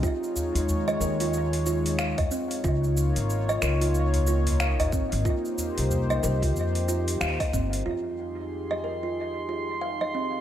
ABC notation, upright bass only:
X:1
M:4/4
L:1/16
Q:"Swing 16ths" 1/4=92
K:Fm
V:1 name="Upright bass" clef=bass
z3 E,,3 E,,6- E,, z3 | D,,3 A,,,3 D,,6- D,, A,,,2 A,,, | z3 C,,3 C,,2 F,,4 E,, z G,,,2 | F,,16 |]